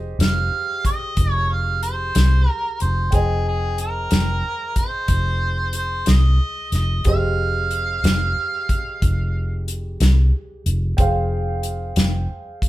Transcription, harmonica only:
0.22 F5
0.86 D#5
1.32 C#5
1.52 F5
1.83 C5
2.49 A#4
2.81 C5
3.13 G#4
3.48 G#4
3.81 A#4
4.79 C5
5.77 C5
6.09 D#5
6.75 D#5
7.08 F5

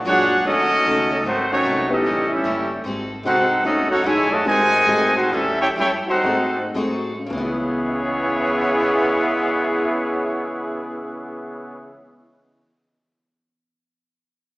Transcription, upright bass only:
0.05 F#2
0.44 D#2
0.84 C#2
1.24 G#1
1.64 C2
2.04 A1
2.44 F#1
2.84 G#1
3.23 C2
3.64 D#2
4.04 F#2
4.45 G#2
4.87 A2
5.30 E2
5.76 F#2
6.06 muted upright bass stroke
6.23 G#2
6.74 A2
7.30 C#2

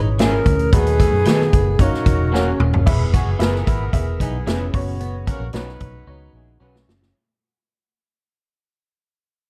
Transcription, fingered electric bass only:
Already playing: G#1
0.46 D2
0.73 D#2
1.12 F#2
1.26 D#3
1.53 F#1
1.79 F#1
1.93 muted fingered electric bass stroke
2.06 E1
2.60 D#1
2.87 E1
3.27 F#1
3.40 F#1
3.67 G#1
3.93 E1
4.20 B1
4.46 F1
4.74 F#1
5.40 A#1
5.54 B1
5.81 B1
6.07 C#2
6.33 A#1
6.61 B1
6.88 F#1

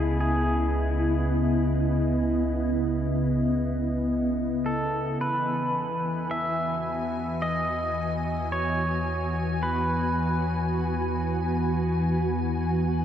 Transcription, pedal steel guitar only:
Already playing: G#4
0.20 G#4
4.66 A4
5.21 B4
6.31 E5
7.42 D#5
8.52 C#5
9.63 B4

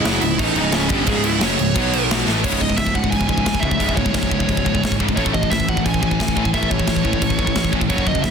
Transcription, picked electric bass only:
0.04 F#1
0.21 C#1
0.39 A1
0.56 C#1
0.90 G1
1.07 C#1
1.41 F#1
1.58 C#1
1.76 B1
2.27 A1
2.44 C#1
2.61 C#1
2.78 C#1
2.95 C#1
3.12 C#1
3.29 C#1
3.45 C#1
3.62 C#2
3.81 C#1
3.97 C#1
4.14 C#1
4.31 C#1
4.49 C#1
4.66 C#1
4.83 G#1
5.17 A1
5.34 A1
5.51 A1
5.68 A1
5.86 A1
6.03 A1
6.20 A1
6.36 A2
6.54 A1
6.71 A1
6.88 A1
7.04 A1
7.22 A1
7.38 A1
7.55 A1
7.90 F#1
8.06 F#1
8.24 F#1

